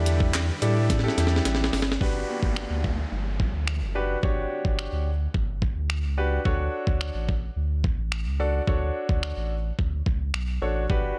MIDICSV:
0, 0, Header, 1, 6, 480
1, 0, Start_track
1, 0, Key_signature, 2, "major"
1, 0, Tempo, 555556
1, 1736, Time_signature, 4, 2, 24, 8
1, 9666, End_track
2, 0, Start_track
2, 0, Title_t, "Grand piano"
2, 0, Program_c, 0, 0
2, 0, Note_on_c, 0, 62, 86
2, 0, Note_on_c, 0, 64, 84
2, 0, Note_on_c, 0, 67, 83
2, 0, Note_on_c, 0, 69, 83
2, 0, Note_on_c, 0, 74, 97
2, 370, Note_off_c, 0, 62, 0
2, 370, Note_off_c, 0, 64, 0
2, 371, Note_off_c, 0, 67, 0
2, 371, Note_off_c, 0, 69, 0
2, 372, Note_off_c, 0, 74, 0
2, 533, Note_on_c, 0, 62, 88
2, 535, Note_on_c, 0, 64, 76
2, 536, Note_on_c, 0, 67, 76
2, 537, Note_on_c, 0, 69, 78
2, 537, Note_on_c, 0, 74, 96
2, 812, Note_off_c, 0, 62, 0
2, 813, Note_off_c, 0, 64, 0
2, 813, Note_off_c, 0, 67, 0
2, 814, Note_off_c, 0, 69, 0
2, 814, Note_off_c, 0, 74, 0
2, 894, Note_on_c, 0, 62, 90
2, 895, Note_on_c, 0, 64, 82
2, 896, Note_on_c, 0, 67, 86
2, 897, Note_on_c, 0, 69, 81
2, 898, Note_on_c, 0, 74, 100
2, 1542, Note_off_c, 0, 62, 0
2, 1542, Note_off_c, 0, 64, 0
2, 1543, Note_off_c, 0, 67, 0
2, 1543, Note_off_c, 0, 69, 0
2, 1544, Note_off_c, 0, 74, 0
2, 1732, Note_on_c, 0, 62, 82
2, 1734, Note_on_c, 0, 66, 73
2, 1736, Note_on_c, 0, 67, 76
2, 1737, Note_on_c, 0, 71, 89
2, 2474, Note_off_c, 0, 62, 0
2, 2475, Note_off_c, 0, 66, 0
2, 2475, Note_off_c, 0, 67, 0
2, 2476, Note_off_c, 0, 71, 0
2, 3412, Note_on_c, 0, 62, 82
2, 3414, Note_on_c, 0, 66, 74
2, 3416, Note_on_c, 0, 67, 73
2, 3417, Note_on_c, 0, 71, 87
2, 3599, Note_off_c, 0, 62, 0
2, 3600, Note_off_c, 0, 66, 0
2, 3601, Note_off_c, 0, 67, 0
2, 3601, Note_off_c, 0, 71, 0
2, 3653, Note_on_c, 0, 62, 84
2, 3655, Note_on_c, 0, 66, 73
2, 3657, Note_on_c, 0, 67, 75
2, 3658, Note_on_c, 0, 73, 89
2, 4394, Note_off_c, 0, 62, 0
2, 4395, Note_off_c, 0, 66, 0
2, 4396, Note_off_c, 0, 67, 0
2, 4396, Note_off_c, 0, 73, 0
2, 5335, Note_on_c, 0, 62, 78
2, 5336, Note_on_c, 0, 66, 75
2, 5338, Note_on_c, 0, 67, 77
2, 5339, Note_on_c, 0, 71, 91
2, 5520, Note_off_c, 0, 62, 0
2, 5521, Note_off_c, 0, 66, 0
2, 5522, Note_off_c, 0, 67, 0
2, 5522, Note_off_c, 0, 71, 0
2, 5573, Note_on_c, 0, 62, 86
2, 5575, Note_on_c, 0, 66, 80
2, 5576, Note_on_c, 0, 69, 77
2, 5577, Note_on_c, 0, 73, 96
2, 6314, Note_off_c, 0, 62, 0
2, 6315, Note_off_c, 0, 66, 0
2, 6315, Note_off_c, 0, 69, 0
2, 6316, Note_off_c, 0, 73, 0
2, 7254, Note_on_c, 0, 62, 80
2, 7255, Note_on_c, 0, 66, 76
2, 7257, Note_on_c, 0, 69, 77
2, 7258, Note_on_c, 0, 74, 93
2, 7440, Note_off_c, 0, 62, 0
2, 7440, Note_off_c, 0, 66, 0
2, 7441, Note_off_c, 0, 69, 0
2, 7442, Note_off_c, 0, 74, 0
2, 7494, Note_on_c, 0, 62, 82
2, 7496, Note_on_c, 0, 66, 77
2, 7497, Note_on_c, 0, 69, 78
2, 7498, Note_on_c, 0, 73, 93
2, 8234, Note_off_c, 0, 62, 0
2, 8235, Note_off_c, 0, 66, 0
2, 8236, Note_off_c, 0, 69, 0
2, 8237, Note_off_c, 0, 73, 0
2, 9173, Note_on_c, 0, 62, 83
2, 9175, Note_on_c, 0, 66, 75
2, 9177, Note_on_c, 0, 69, 71
2, 9177, Note_on_c, 0, 73, 92
2, 9359, Note_off_c, 0, 62, 0
2, 9360, Note_off_c, 0, 66, 0
2, 9361, Note_off_c, 0, 69, 0
2, 9362, Note_off_c, 0, 73, 0
2, 9413, Note_on_c, 0, 62, 81
2, 9415, Note_on_c, 0, 66, 77
2, 9416, Note_on_c, 0, 67, 76
2, 9417, Note_on_c, 0, 71, 90
2, 9666, Note_off_c, 0, 62, 0
2, 9666, Note_off_c, 0, 66, 0
2, 9666, Note_off_c, 0, 67, 0
2, 9666, Note_off_c, 0, 71, 0
2, 9666, End_track
3, 0, Start_track
3, 0, Title_t, "Supersaw synth"
3, 0, Program_c, 1, 81
3, 0, Note_on_c, 1, 50, 86
3, 0, Note_on_c, 1, 55, 79
3, 0, Note_on_c, 1, 71, 91
3, 1700, Note_off_c, 1, 50, 0
3, 1700, Note_off_c, 1, 71, 0
3, 1716, Note_off_c, 1, 55, 0
3, 9666, End_track
4, 0, Start_track
4, 0, Title_t, "Sub bass"
4, 0, Program_c, 2, 38
4, 0, Note_on_c, 2, 40, 91
4, 441, Note_off_c, 2, 40, 0
4, 536, Note_on_c, 2, 45, 102
4, 939, Note_off_c, 2, 45, 0
4, 1016, Note_on_c, 2, 40, 92
4, 1217, Note_off_c, 2, 40, 0
4, 1255, Note_on_c, 2, 33, 91
4, 1472, Note_off_c, 2, 33, 0
4, 1495, Note_on_c, 2, 31, 90
4, 1712, Note_off_c, 2, 31, 0
4, 1735, Note_on_c, 2, 31, 96
4, 1937, Note_off_c, 2, 31, 0
4, 2096, Note_on_c, 2, 31, 91
4, 2298, Note_off_c, 2, 31, 0
4, 2335, Note_on_c, 2, 38, 91
4, 2638, Note_off_c, 2, 38, 0
4, 2696, Note_on_c, 2, 31, 96
4, 2999, Note_off_c, 2, 31, 0
4, 3056, Note_on_c, 2, 38, 90
4, 3296, Note_on_c, 2, 30, 87
4, 3309, Note_off_c, 2, 38, 0
4, 3598, Note_off_c, 2, 30, 0
4, 3656, Note_on_c, 2, 31, 102
4, 3858, Note_off_c, 2, 31, 0
4, 4016, Note_on_c, 2, 31, 94
4, 4218, Note_off_c, 2, 31, 0
4, 4256, Note_on_c, 2, 38, 88
4, 4558, Note_off_c, 2, 38, 0
4, 4617, Note_on_c, 2, 31, 98
4, 4919, Note_off_c, 2, 31, 0
4, 4975, Note_on_c, 2, 38, 92
4, 5217, Note_on_c, 2, 37, 88
4, 5230, Note_off_c, 2, 38, 0
4, 5519, Note_off_c, 2, 37, 0
4, 5576, Note_on_c, 2, 38, 99
4, 5778, Note_off_c, 2, 38, 0
4, 5937, Note_on_c, 2, 38, 90
4, 6138, Note_off_c, 2, 38, 0
4, 6175, Note_on_c, 2, 33, 88
4, 6478, Note_off_c, 2, 33, 0
4, 6535, Note_on_c, 2, 38, 95
4, 6838, Note_off_c, 2, 38, 0
4, 6894, Note_on_c, 2, 33, 91
4, 7134, Note_on_c, 2, 37, 88
4, 7147, Note_off_c, 2, 33, 0
4, 7437, Note_off_c, 2, 37, 0
4, 7495, Note_on_c, 2, 38, 100
4, 7697, Note_off_c, 2, 38, 0
4, 7856, Note_on_c, 2, 38, 90
4, 8058, Note_off_c, 2, 38, 0
4, 8095, Note_on_c, 2, 33, 90
4, 8398, Note_off_c, 2, 33, 0
4, 8456, Note_on_c, 2, 38, 99
4, 8658, Note_off_c, 2, 38, 0
4, 8695, Note_on_c, 2, 37, 85
4, 8911, Note_off_c, 2, 37, 0
4, 8935, Note_on_c, 2, 35, 83
4, 9151, Note_off_c, 2, 35, 0
4, 9174, Note_on_c, 2, 33, 89
4, 9391, Note_off_c, 2, 33, 0
4, 9415, Note_on_c, 2, 31, 100
4, 9617, Note_off_c, 2, 31, 0
4, 9666, End_track
5, 0, Start_track
5, 0, Title_t, "Downlifter"
5, 0, Program_c, 3, 103
5, 1736, Note_on_c, 3, 60, 78
5, 5576, Note_off_c, 3, 60, 0
5, 9666, End_track
6, 0, Start_track
6, 0, Title_t, "Drums"
6, 54, Note_on_c, 9, 42, 83
6, 141, Note_off_c, 9, 42, 0
6, 176, Note_on_c, 9, 36, 94
6, 262, Note_off_c, 9, 36, 0
6, 295, Note_on_c, 9, 39, 109
6, 295, Note_on_c, 9, 42, 83
6, 302, Note_on_c, 9, 38, 90
6, 382, Note_off_c, 9, 39, 0
6, 382, Note_off_c, 9, 42, 0
6, 388, Note_off_c, 9, 38, 0
6, 536, Note_on_c, 9, 42, 65
6, 622, Note_off_c, 9, 42, 0
6, 776, Note_on_c, 9, 38, 63
6, 777, Note_on_c, 9, 36, 98
6, 777, Note_on_c, 9, 42, 91
6, 856, Note_off_c, 9, 38, 0
6, 856, Note_on_c, 9, 38, 56
6, 863, Note_off_c, 9, 36, 0
6, 864, Note_off_c, 9, 42, 0
6, 936, Note_off_c, 9, 38, 0
6, 936, Note_on_c, 9, 38, 72
6, 1017, Note_off_c, 9, 38, 0
6, 1017, Note_on_c, 9, 38, 67
6, 1019, Note_on_c, 9, 42, 76
6, 1097, Note_off_c, 9, 38, 0
6, 1097, Note_on_c, 9, 38, 84
6, 1105, Note_off_c, 9, 42, 0
6, 1177, Note_off_c, 9, 38, 0
6, 1177, Note_on_c, 9, 38, 76
6, 1256, Note_on_c, 9, 42, 113
6, 1257, Note_off_c, 9, 38, 0
6, 1257, Note_on_c, 9, 38, 96
6, 1336, Note_off_c, 9, 38, 0
6, 1336, Note_on_c, 9, 38, 82
6, 1342, Note_off_c, 9, 42, 0
6, 1416, Note_off_c, 9, 38, 0
6, 1416, Note_on_c, 9, 38, 101
6, 1495, Note_on_c, 9, 46, 64
6, 1496, Note_off_c, 9, 38, 0
6, 1496, Note_on_c, 9, 38, 95
6, 1576, Note_off_c, 9, 38, 0
6, 1576, Note_on_c, 9, 38, 110
6, 1581, Note_off_c, 9, 46, 0
6, 1656, Note_off_c, 9, 38, 0
6, 1656, Note_on_c, 9, 38, 98
6, 1736, Note_on_c, 9, 36, 106
6, 1742, Note_off_c, 9, 38, 0
6, 1822, Note_off_c, 9, 36, 0
6, 2096, Note_on_c, 9, 36, 89
6, 2182, Note_off_c, 9, 36, 0
6, 2216, Note_on_c, 9, 26, 109
6, 2302, Note_off_c, 9, 26, 0
6, 2456, Note_on_c, 9, 36, 88
6, 2542, Note_off_c, 9, 36, 0
6, 2936, Note_on_c, 9, 36, 92
6, 3022, Note_off_c, 9, 36, 0
6, 3175, Note_on_c, 9, 26, 116
6, 3262, Note_off_c, 9, 26, 0
6, 3656, Note_on_c, 9, 36, 107
6, 3742, Note_off_c, 9, 36, 0
6, 4016, Note_on_c, 9, 36, 88
6, 4103, Note_off_c, 9, 36, 0
6, 4136, Note_on_c, 9, 26, 105
6, 4223, Note_off_c, 9, 26, 0
6, 4617, Note_on_c, 9, 36, 91
6, 4704, Note_off_c, 9, 36, 0
6, 4856, Note_on_c, 9, 36, 89
6, 4942, Note_off_c, 9, 36, 0
6, 5096, Note_on_c, 9, 26, 114
6, 5182, Note_off_c, 9, 26, 0
6, 5576, Note_on_c, 9, 36, 103
6, 5662, Note_off_c, 9, 36, 0
6, 5936, Note_on_c, 9, 36, 93
6, 6023, Note_off_c, 9, 36, 0
6, 6055, Note_on_c, 9, 26, 110
6, 6142, Note_off_c, 9, 26, 0
6, 6296, Note_on_c, 9, 36, 88
6, 6382, Note_off_c, 9, 36, 0
6, 6775, Note_on_c, 9, 36, 98
6, 6861, Note_off_c, 9, 36, 0
6, 7015, Note_on_c, 9, 26, 114
6, 7101, Note_off_c, 9, 26, 0
6, 7495, Note_on_c, 9, 36, 104
6, 7582, Note_off_c, 9, 36, 0
6, 7855, Note_on_c, 9, 36, 90
6, 7942, Note_off_c, 9, 36, 0
6, 7975, Note_on_c, 9, 26, 111
6, 8061, Note_off_c, 9, 26, 0
6, 8456, Note_on_c, 9, 36, 92
6, 8542, Note_off_c, 9, 36, 0
6, 8694, Note_on_c, 9, 36, 93
6, 8781, Note_off_c, 9, 36, 0
6, 8934, Note_on_c, 9, 26, 116
6, 9021, Note_off_c, 9, 26, 0
6, 9415, Note_on_c, 9, 36, 106
6, 9501, Note_off_c, 9, 36, 0
6, 9666, End_track
0, 0, End_of_file